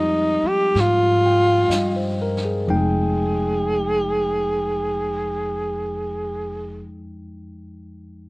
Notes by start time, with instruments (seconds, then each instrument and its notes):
Already playing: upright bass F2, tine electric piano F3 G3 D#4 G4, tenor saxophone D#4
0.43 muted upright bass stroke
0.47 tenor saxophone G4
0.75 upright bass G#2, brush sweep, snare
0.80 tenor saxophone F4
1.26 tine electric piano G5
1.47 tine electric piano F5
1.69 upright bass G2, tine electric piano D#5, snare, hi-hat pedal
1.96 tine electric piano C5
2.22 tine electric piano A#4
2.37 snare
2.45 tine electric piano G#4
2.67 upright bass F1, tine electric piano F2 F3 G#3 D#4 G5
2.75 tenor saxophone G#4